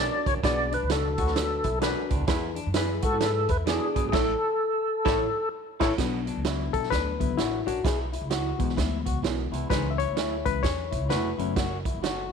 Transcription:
Already playing: F#2 D4 F#4 D5
0.00 B4 D5
0.26 C#2 F#2 C#5, kick, closed hi-hat
0.37 A#1
0.43 B1 B2 B3 D4 F#4 G#4 D5, kick, snare, closed hi-hat
0.71 D4 B4, closed hi-hat
0.83 C#2
0.89 D4 F#4 A4 B4, snare, closed hi-hat
1.18 D2 A2 F#4, kick, closed hi-hat
1.27 D4 F#4 B4, snare
1.36 D4 F#4 B4, snare, closed hi-hat
1.64 B1 E4, kick, closed hi-hat
1.81 F#2 D4 F#4 B4, snare, closed hi-hat
2.10 C#2 E2 D4, kick, closed hi-hat
2.21 D#2
2.27 E2 E3 E4 G#4 B4, kick, snare, closed hi-hat
2.55 D4, closed hi-hat
2.66 F#2
2.74 E4 G#4 B4, snare, closed hi-hat
3.02 G#2 F#4 A4, kick, closed hi-hat
3.12 E4 G#4 B4
3.20 E4 G#4 B4, snare, closed hi-hat
3.49 E2 E4 B4, kick, closed hi-hat
3.66 B2 D4 E4 G#4 B4 D5, snare, closed hi-hat
3.95 F#2 B2, kick, closed hi-hat
4.05 G#1
4.09 A2 E4 G#4
4.13 A1 A2 E4 A4 C#5, kick, snare, crash
5.05 A1 A2 E4 A4 C#5, kick, snare
5.80 A1 E2 E4 A4 C#5, kick, snare, crash
5.97 B1 B2 F#3 B3 D4, kick, snare, closed hi-hat
6.27 D4, closed hi-hat
6.37 C#2
6.44 D4 E4 F#4 B4, snare, closed hi-hat
6.73 B1 A4, kick, closed hi-hat
6.83 snare
6.90 D2 D4 B4, kick, snare, closed hi-hat
7.20 C#2 D3 F#3 B3 E4, kick, closed hi-hat
7.38 A1 F#2 D4 E4 F#4 B4, snare, closed hi-hat
7.66 A#1 F#2 D4 F#4, closed hi-hat
7.84 B1 E2 E4 G#4, kick, snare, closed hi-hat
8.13 E4, closed hi-hat
8.21 C#2
8.30 E4 F#4 G#4 B4, snare, closed hi-hat
8.58 B1 G#2 E3 G#3 B3, kick, closed hi-hat
8.69 snare
8.77 D2 E4, kick, snare, closed hi-hat
9.06 C#2 F#4, kick, closed hi-hat
9.22 B1 F#2 E4 G#4 B4, snare, closed hi-hat
9.51 C2 E2 E4, closed hi-hat
9.69 C#2 G#2 E3 G#3 C#4 B4, kick, snare, closed hi-hat
9.91 E5
9.98 E4 C#5, closed hi-hat
10.08 D2
10.16 E4 G#4 C#5, snare, closed hi-hat
10.45 C#2 E3 G#3 C#4 B4, kick, closed hi-hat
10.63 E2 C#4 C#5, kick, snare, closed hi-hat
10.91 C#2 E4, kick, closed hi-hat
11.09 F1 E2 E4 F#4 G#4 B4 C#5, snare, closed hi-hat
11.38 F#1 E2 F#3 A3 C#4 E4, closed hi-hat
11.56 F#2 F#4, kick, snare, closed hi-hat
11.85 E4, kick, closed hi-hat
11.94 F#1
12.02 F#4 A4 C#5, snare, closed hi-hat

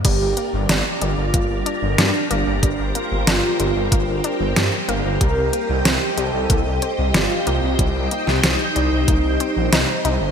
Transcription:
0.05 G1 G3 G4 A#4 D5 A#5, kick, closed hi-hat, crash
0.21 G1
0.37 A#3, closed hi-hat
0.53 G1
0.69 G1 D4, snare, closed hi-hat
1.02 G1 G3 F4, closed hi-hat
1.18 G1
1.34 G1 A#3, kick, closed hi-hat
1.50 G1
1.66 D4, closed hi-hat
1.82 G1
1.98 G2 G3 D4, snare, closed hi-hat
2.31 G1 A#3, closed hi-hat
2.47 G1
2.63 G1 G3 C5, kick, closed hi-hat
2.79 G1
2.95 A#3 F4, closed hi-hat
3.11 G1
3.27 G1 D4, snare, closed hi-hat
3.60 G1 G3, closed hi-hat
3.76 G1
3.92 G1 A#3, kick, closed hi-hat
4.08 G1
4.24 D4, closed hi-hat
4.40 G1
4.56 G2 G3, snare, closed hi-hat
4.89 G1 A#3, closed hi-hat
5.05 G1
5.21 C2 G3 A#4 D#5 G5, kick, closed hi-hat
5.37 C2
5.53 A#3, closed hi-hat
5.69 C2
5.85 C2 C4, snare, closed hi-hat
6.18 C2 G3 A4, closed hi-hat
6.34 C2
6.50 C2 A#3, kick, closed hi-hat
6.66 C2
6.82 C4, closed hi-hat
6.98 C2
7.14 G1 G3 F4, snare, closed hi-hat
7.47 C2 A#3, closed hi-hat
7.63 C2
7.79 C2 G3, kick, closed hi-hat
7.95 C2
8.11 A#3 D#4, closed hi-hat
8.27 C2, snare
8.44 C4, snare, closed hi-hat
8.76 C2 G3, closed hi-hat
8.92 C2
9.08 C2 A#3, kick, closed hi-hat
9.24 C2
9.40 C4, closed hi-hat
9.56 A#1
9.73 C2 D#4, snare, closed hi-hat
10.05 C2 D#4, closed hi-hat
10.21 G1

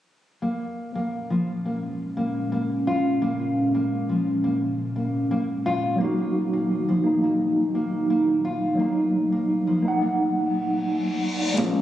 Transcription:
0.42 A#2 G#3 A#3 C#4
0.95 A#3
1.30 F3
1.65 A#3
2.17 A#3
2.52 A#3
2.87 F4
3.22 A#3
3.75 A#3
4.09 F3
4.44 A#3
4.96 A#3
5.31 A#3
5.66 F4
5.96 F#3 A#3
6.01 A#3 D#4 F#4
6.53 A#3
6.89 F3
7.04 A#3 D#4
7.23 A#3
7.75 A#3
8.10 A#3
8.45 F4
8.75 F#3 A#3
8.79 A#3 D#4
9.32 A#3
9.67 F3
9.82 A#3 D#4
9.88 F#5
10.02 A#3
10.18 reverse cymbal
11.54 G#3 A#3
11.58 A#1 A#3 C#4
11.62 F4

